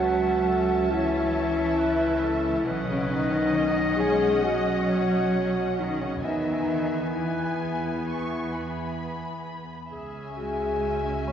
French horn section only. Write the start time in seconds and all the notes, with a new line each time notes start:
Already playing: F#4
0.91 E4
2.90 C#4
3.10 D#4
3.97 G#4
4.43 F#4
5.80 D#4
6.02 C#4
6.23 D#4
7.14 E4
10.35 G#4
11.27 C#5